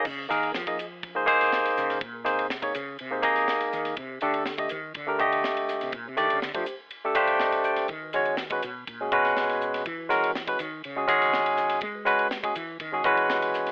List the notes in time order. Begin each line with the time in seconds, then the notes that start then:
0.05 C#3, kick, crash
0.18 G#4 C5
0.29 D#3 A#3 D#4 G#4 A#4, snare, hi-hat pedal, ride bell
0.43 ride bell
0.54 F3 G#4 A#4, snare
0.67 A#3 D#4 G#4 D#5, kick, ride bell
0.78 G#4, hi-hat pedal, ride bell
1.03 kick, ride bell
1.15 A#3 D#4 G#4 C5
1.26 A#3 D#4 G#4 C5, kick, hi-hat pedal
1.41 snare, ride bell
1.52 snare
1.66 snare, ride bell
1.77 C#3, snare, hi-hat pedal
1.90 snare, ride bell
2.01 A#2, kick, ride bell
2.13 G#4 A#4
2.24 C3 A#3 D#4 G#4 C5, snare, hi-hat pedal, ride bell
2.39 ride bell
2.49 G#4, snare
2.62 A#3 D#4 G#4 C#5, kick, ride bell
2.73 C#3 G#4 C5, hi-hat pedal, ride bell
2.99 C3, ride bell
3.10 A#3 D#4 G#4 C5
3.22 A#3 D#4 G#4 D#5, kick, hi-hat pedal, ride bell
3.36 snare, ride bell
3.48 snare
3.61 snare, ride bell
3.73 D#3, snare, hi-hat pedal
3.85 snare, ride bell
3.96 C3, kick, ride bell
4.10 G4 C5
4.21 D3 A3 D4 G4 A4, hi-hat pedal, ride bell
4.34 ride bell
4.46 snare
4.58 A3 D4 G4 D#5, kick, ride bell
4.69 D#3 G4 C5, hi-hat pedal, ride bell
4.94 D3, kick, ride bell
5.06 A3 D4 G4 A#4
5.19 D3 A3 G4 D#5, kick, hi-hat pedal
5.32 ride bell
5.44 snare
5.57 ride bell
5.69 snare, hi-hat pedal
5.81 C3, snare, ride bell
5.92 A#2, kick, ride bell
6.05 C3 G4 C5
6.17 D#3 A3 D4 G4 D5, snare, hi-hat pedal, ride bell
6.30 C#3, ride bell
6.42 D3 G4, snare
6.54 F3 A3 D4 G4 C5, kick, ride bell
6.66 G4 C5, hi-hat pedal, ride bell
6.91 ride bell
7.04 A3 D4 G4 A4
7.15 A3 D4 G4 C5 F5, kick, hi-hat pedal, ride bell
7.27 ride bell
7.40 D#5, snare
7.52 snare, ride bell
7.64 G5, hi-hat pedal
7.76 snare, ride bell
7.88 D#3, kick, ride bell
8.02 F#4 B4
8.13 G#3 C#4 F#4 C#5, hi-hat pedal, ride bell
8.25 ride bell
8.37 F#4 B4, snare
8.50 G#3 C#4 F#4 B4, kick, ride bell
8.62 B2 F#4 C#5, hi-hat pedal, ride bell
8.87 A#2, kick, ride bell
9.01 G#3 C#4 F#4 G#4
9.12 B2 G#3 C#4 F#4 B4, kick, hi-hat pedal
9.25 snare, ride bell
9.37 snare
9.49 snare, ride bell
9.61 hi-hat pedal
9.74 snare, ride bell
9.86 E3, kick, ride bell
9.98 F#4 B4
10.09 G#3 C#4 F#4 A#4, snare, hi-hat pedal, ride bell
10.24 ride bell
10.35 snare
10.47 G#3 C#4 F#4 B4, kick, ride bell
10.59 D#3 F#4 C#5, hi-hat pedal, ride bell
10.84 C#3, ride bell
10.96 G#3 C#4 F#4 G#4
11.08 D#3 G#3 C#4 F#4 G#4, kick, hi-hat pedal, ride bell
11.22 snare, ride bell
11.34 snare
11.46 ride bell
11.57 snare, hi-hat pedal
11.70 snare, ride bell
11.81 G#3, kick, ride bell
11.94 F#4 B4
12.05 G#3 C#4 F#4 B4, snare, hi-hat pedal, ride bell
12.19 ride bell
12.31 snare
12.43 G#3 C#4 F#4 G#4, kick, ride bell
12.55 E3 B4, hi-hat pedal, ride bell
12.80 D#3, kick, ride bell
12.92 G#3 C#4 F#4 G#4
13.04 E3 G#3 C#4 F#4 B4, kick, hi-hat pedal
13.17 ride bell
13.30 snare
13.42 snare, ride bell
13.54 snare, hi-hat pedal
13.66 snare, ride bell